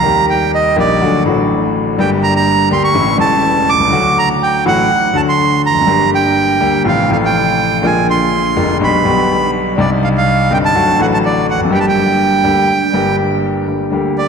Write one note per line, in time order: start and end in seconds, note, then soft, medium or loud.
0.00 0.73 D#2 medium
0.00 0.03 D#3 medium
0.00 0.73 D#3 medium
0.00 0.73 G3 medium
0.00 0.26 A#5 medium
0.04 0.73 A#3 medium
0.04 0.74 G4 medium
0.30 0.52 G5 medium
0.55 0.76 D#5 medium
0.76 0.97 A#1 medium
0.76 0.97 A#2 medium
0.76 0.97 D#3 medium
0.76 0.97 G3 medium
0.76 0.97 A#3 medium
0.76 0.97 G4 medium
0.76 1.23 D5 medium
1.01 1.22 D2 medium
1.01 1.22 D3 medium
1.01 1.22 F#3 medium
1.01 1.22 A3 medium
1.01 1.22 F#4 medium
1.24 1.94 A1 medium
1.24 1.95 A2 medium
1.24 1.94 D3 medium
1.24 1.94 F#3 medium
1.24 1.95 A3 medium
1.24 1.96 F#4 medium
1.96 2.67 G1 medium
1.96 2.67 G2 medium
1.96 2.66 D3 medium
1.96 2.67 G3 medium
1.96 2.67 A#3 medium
1.96 2.10 G5 medium
2.01 2.68 G4 medium
2.23 2.34 A#5 medium
2.36 2.69 A#5 medium
2.70 2.91 D2 medium
2.70 2.91 D3 medium
2.70 2.91 G3 medium
2.70 2.91 A#3 medium
2.70 2.91 G4 medium
2.70 2.83 C6 medium
2.84 3.17 C#6 loud
2.94 3.15 A1 medium
2.94 3.15 A2 medium
2.94 3.15 C#3 medium
2.94 3.15 G3 medium
2.94 3.15 A3 medium
2.94 3.15 E4 medium
3.16 3.88 E1 medium
3.16 3.88 E2 medium
3.16 3.87 C#3 medium
3.16 3.88 G3 medium
3.16 3.88 A3 medium
3.16 3.89 E4 medium
3.16 3.70 A5 medium
3.69 4.18 D6 loud
3.73 3.80 B1 medium
3.80 3.86 C2 medium
3.85 3.92 C#2 medium
3.85 4.60 D3 medium
3.90 4.61 D2 medium
3.90 4.60 F#3 medium
3.90 4.61 A3 medium
3.90 4.62 F#4 medium
4.19 4.29 A#5 medium
4.43 4.64 G5 medium
4.65 4.86 A1 medium
4.65 4.86 A2 medium
4.65 4.86 D3 medium
4.65 4.86 F#3 medium
4.65 4.86 A3 medium
4.65 4.86 F#4 medium
4.65 5.17 F#5 medium
5.13 5.84 D2 medium
5.13 5.83 D3 medium
5.13 5.84 F#3 medium
5.13 5.84 A3 medium
5.13 5.85 F#4 medium
5.13 5.21 A5 medium
5.29 5.62 C6 loud
5.66 5.75 E2 soft
5.66 6.10 A#5 medium
5.74 5.81 F2 medium
5.81 5.87 F#2 medium
5.81 6.56 D3 medium
5.86 6.57 G1 medium
5.86 6.57 G2 medium
5.86 6.57 G3 medium
5.86 6.58 A#3 medium
5.86 6.58 G4 medium
6.15 6.83 G5 medium
6.60 6.81 D2 medium
6.60 6.81 D3 medium
6.60 6.82 G3 medium
6.60 6.81 A#3 medium
6.60 6.82 G4 medium
6.85 7.06 A1 medium
6.85 7.06 A2 medium
6.85 7.06 C3 medium
6.85 7.06 F3 medium
6.85 7.06 A3 medium
6.85 7.06 F4 medium
6.85 7.11 F5 medium
7.08 7.79 A1 medium
7.08 7.79 A2 medium
7.08 7.78 C3 medium
7.08 7.79 F3 medium
7.08 7.80 A3 medium
7.12 7.81 F4 medium
7.12 7.17 F5 medium
7.25 7.86 G5 medium
7.81 8.52 A#1 medium
7.81 8.52 A#2 medium
7.81 8.51 D3 medium
7.81 8.52 G#3 medium
7.81 8.53 A#3 medium
7.85 8.53 F4 medium
7.85 8.07 G#5 medium
8.10 8.78 C6 medium
8.56 8.77 F1 medium
8.56 8.77 F2 medium
8.56 8.77 D3 medium
8.56 8.77 G#3 medium
8.56 8.77 A#3 medium
8.56 8.77 F4 medium
8.80 9.01 B1 medium
8.80 9.01 B2 medium
8.80 9.01 D3 medium
8.80 9.01 G3 medium
8.80 9.01 B3 medium
8.80 9.01 G4 medium
8.80 9.51 B5 medium
9.03 9.74 B1 medium
9.03 9.74 B2 medium
9.03 9.73 D3 medium
9.03 9.74 G3 medium
9.03 9.74 B3 medium
9.07 9.75 G4 medium
9.76 10.47 C2 medium
9.76 10.47 C3 medium
9.76 10.46 G3 medium
9.76 10.47 C4 medium
9.76 10.46 D4 medium
9.76 10.48 D#4 medium
9.80 9.90 D5 medium
10.04 10.09 F5 medium
10.18 10.53 F5 medium
10.50 10.71 G1 medium
10.50 10.71 G2 medium
10.50 10.71 D3 medium
10.50 10.71 G3 medium
10.50 10.71 C4 medium
10.50 10.71 D#4 medium
10.50 10.58 G5 loud
10.65 11.01 A5 loud
10.74 10.95 D2 medium
10.74 10.95 D3 medium
10.74 10.95 F#3 medium
10.74 10.95 A3 medium
10.74 10.95 F#4 medium
10.98 11.68 A1 medium
10.98 11.68 A2 medium
10.98 11.67 D3 medium
10.98 11.67 F#3 medium
10.98 11.68 A3 medium
10.98 11.69 F#4 medium
11.02 11.07 F#5 medium
11.14 11.18 A5 loud
11.25 11.47 D5 medium
11.51 11.59 E2 medium
11.51 11.61 F#5 medium
11.59 11.65 F2 medium
11.65 11.71 F#2 medium
11.65 12.39 D3 medium
11.70 12.40 G1 medium
11.70 12.40 G2 medium
11.70 12.40 G3 medium
11.70 12.40 A#3 medium
11.70 12.41 G4 medium
11.74 11.79 G5 medium
11.80 11.86 A5 medium
11.89 13.16 G5 medium
12.44 12.65 D2 medium
12.44 12.65 D3 medium
12.44 12.65 G3 medium
12.44 12.65 A#3 medium
12.44 12.65 G4 medium
12.92 13.64 G1 medium
12.92 13.64 G2 medium
12.92 13.63 D3 medium
12.92 13.64 G3 medium
12.92 13.65 A#3 medium
12.92 13.65 G4 medium
13.68 13.88 G1 soft
13.68 13.89 G2 soft
13.68 13.88 D3 soft
13.68 13.89 G3 soft
13.68 13.89 A#3 soft
13.68 13.89 G4 soft
13.90 14.28 D2 medium
13.90 13.92 D3 medium
13.90 14.28 D3 medium
13.90 14.28 G3 medium
13.90 14.28 A#3 medium
13.90 14.28 G4 medium
14.18 14.28 D5 medium